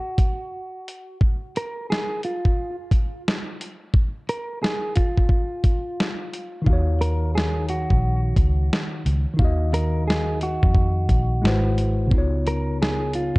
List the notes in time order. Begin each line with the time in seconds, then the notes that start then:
Already playing: F#4
0.18 kick, closed hi-hat
0.88 closed hi-hat
1.21 kick
1.56 A#4, closed hi-hat
1.90 G#4, snare
2.23 F4, closed hi-hat
2.45 kick
2.91 kick, closed hi-hat
3.28 snare
3.61 closed hi-hat
3.94 kick
4.29 A#4, closed hi-hat
4.63 G#4, snare
4.96 F4, kick, closed hi-hat
5.18 kick
5.29 kick
5.64 kick, closed hi-hat
6.00 snare
6.33 closed hi-hat
6.62 D#3 D#4
6.66 D#2 F#4 F5, kick
6.73 C#5
7.01 A#4, closed hi-hat
7.35 G#4, snare
7.69 F#4, closed hi-hat
7.90 A#1, kick
8.37 C#2, kick, closed hi-hat
8.73 snare
9.06 C#2, closed hi-hat
9.34 D#3 D#4
9.39 D#2 F#4 F5, kick
9.45 D#5
9.74 A#4, closed hi-hat
10.08 G#4, snare
10.41 F#4, closed hi-hat
10.63 F2, kick
10.75 kick
11.09 A#1, kick, closed hi-hat
11.42 G#1 G#3 E4 F#4, snare
11.46 B4 C5
11.78 closed hi-hat
12.07 C#3 B3
12.11 C#2 D#4 F4, kick
12.18 C#5
12.47 A#4, closed hi-hat
12.82 G#4, snare
13.13 F4, closed hi-hat
13.36 G#1, kick